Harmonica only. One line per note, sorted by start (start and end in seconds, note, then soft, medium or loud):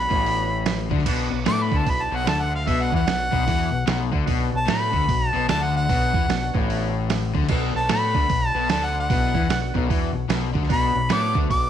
0.00 0.89 B5 loud
1.49 1.64 D6 loud
1.62 1.79 B5 medium
1.78 1.91 A5 medium
1.90 2.04 B5 loud
2.03 2.17 A5 medium
2.15 2.28 F#5 loud
2.28 2.43 A5 loud
2.42 2.54 F#5 medium
2.55 2.69 F5 medium
2.68 2.84 E5 medium
2.82 2.95 F#5 medium
2.96 4.12 F#5 loud
4.57 4.69 A5 loud
4.69 5.29 B5 loud
5.29 5.47 A5 loud
5.49 5.64 A5 loud
5.62 5.76 F#5 loud
5.76 6.54 F#5 loud
7.77 7.90 A5 loud
7.92 8.47 B5 loud
8.47 8.71 A5 loud
8.71 8.86 A5 loud
8.85 8.97 F#5 medium
9.00 9.76 F#5 loud
10.73 11.15 B5 loud
11.13 11.36 D6 loud
11.51 11.70 D6 loud